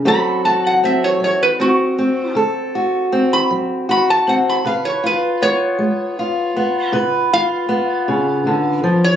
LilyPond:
<<
  \new Staff \with { instrumentName = "Resonator guitar played with a steel bar" } { \time 12/8 \key d \lydian \tempo 4. = 52 b''8 a''16 fis''16 e''16 cis''16 cis''16 b'16 fis'4 r4 r16 b''16 r8 b''16 a''16 fis''16 b''16 | eis''16 cis''16 b'8 cis''2 r8 eis''2~ eis''16 cis''16 | }
  \new Staff \with { instrumentName = "Steel-string acoustic guitar" } { \time 12/8 \key d \lydian << { <fis c' fis' a'>8 fis'8 c'4 c'8 c'8 a'8 fis'8 c'4 fis'8 c'8 | b'8 eis'8 b4 eis'8 b8 b'8 eis'8 b2 | } \\ { d4 r8 fis4 r8 d4 r8 fis4 r8 | cis4 r8 gis4 r8 cis4 r8 cis8 d8 eis8 | } >> }
>>